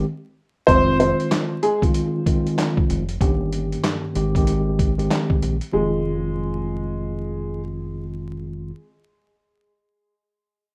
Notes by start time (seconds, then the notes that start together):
0.67 F1 D#3 G#3 C4 F4 C5, kick, closed hi-hat
1.00 C4 C5, closed hi-hat
1.20 closed hi-hat
1.31 snare, clap, closed hi-hat
1.63 G#3 G#4, closed hi-hat
1.82 D#3 G#3 C4 F4, kick, closed hi-hat
1.94 closed hi-hat
2.26 D#3 G#3 C4 F4, kick, closed hi-hat
2.47 closed hi-hat
2.58 snare, clap, closed hi-hat
2.77 kick
2.90 F1, closed hi-hat
3.09 closed hi-hat
3.20 G1 G2 D#3 A#3 C#4 G4, kick, closed hi-hat
3.53 closed hi-hat
3.72 closed hi-hat
3.84 snare, clap, closed hi-hat
4.15 G#1 D#3 G#3 C4 G4, closed hi-hat
4.35 D#3 G#3 C4 G4, kick, closed hi-hat
4.47 closed hi-hat
4.79 kick, closed hi-hat
4.98 D#3 G#3 C4 G4, closed hi-hat
5.11 snare, clap, closed hi-hat
5.30 kick
5.42 A#1, closed hi-hat
5.61 closed hi-hat
5.73 F1 D#3 G#3 C4 F4